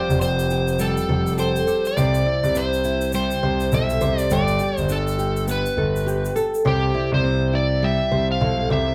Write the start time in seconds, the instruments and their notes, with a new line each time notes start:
Already playing: nylon-string guitar F3 G3 C4 G4 A4, electric slide guitar C5
0.09 grand piano F1, shaker
0.21 nylon-string guitar C4, electric slide guitar C5, shaker
0.39 shaker
0.50 nylon-string guitar G4, shaker
0.68 shaker
0.79 nylon-string guitar G3, electric slide guitar A4, shaker
0.97 shaker
1.09 grand piano F1, nylon-string guitar A4, steel-string acoustic guitar C5
1.27 shaker
1.37 nylon-string guitar G4, steel-string acoustic guitar A4, electric slide guitar C5, shaker
1.56 shaker
1.67 steel-string acoustic guitar G4, nylon-string guitar A4, shaker
1.85 electric slide guitar D5, shaker
1.97 grand piano C2, nylon-string guitar C3 C5, shaker
2.15 shaker
2.26 nylon-string guitar E4, steel-string acoustic guitar D5
2.44 grand piano C2, shaker
2.55 nylon-string guitar C4, electric slide guitar C5, shaker
2.73 shaker
2.84 nylon-string guitar E4, shaker
3.01 shaker
3.12 nylon-string guitar G3, electric slide guitar C5, shaker
3.31 shaker
3.43 grand piano C2, nylon-string guitar C5, steel-string acoustic guitar C5
3.60 shaker
3.72 grand piano B1, nylon-string guitar E4, steel-string acoustic guitar A4, electric slide guitar E5, shaker
3.90 shaker
4.01 grand piano C2, steel-string acoustic guitar G4, nylon-string guitar C5, shaker
4.18 electric slide guitar D5, shaker
4.30 grand piano G1, nylon-string guitar G3 A4, electric slide guitar D5, shaker
4.48 shaker
4.59 nylon-string guitar G4, steel-string acoustic guitar D5, shaker
4.78 grand piano G1, electric slide guitar C5, shaker
4.89 nylon-string guitar D4, electric slide guitar A4, shaker
5.07 shaker
5.19 nylon-string guitar G4, shaker
5.37 shaker
5.48 nylon-string guitar B3, electric slide guitar B4, shaker
5.66 shaker
5.77 grand piano G1, nylon-string guitar A4, steel-string acoustic guitar B4
5.96 shaker
6.06 nylon-string guitar G4, steel-string acoustic guitar G4, shaker
6.25 shaker
6.36 steel-string acoustic guitar A4, nylon-string guitar A4, shaker
6.54 shaker
6.65 grand piano C2, nylon-string guitar C3 C5, electric slide guitar G4
6.94 nylon-string guitar E4, steel-string acoustic guitar D5
7.12 grand piano C2, electric slide guitar C5
7.24 nylon-string guitar C4
7.53 nylon-string guitar E4, electric slide guitar D5
7.83 nylon-string guitar G3, electric slide guitar E5
8.11 grand piano C2, nylon-string guitar C5, steel-string acoustic guitar C5
8.32 electric slide guitar F5
8.41 grand piano B1, nylon-string guitar E4, steel-string acoustic guitar A4
8.70 grand piano C2, steel-string acoustic guitar G4, nylon-string guitar C5, electric slide guitar E5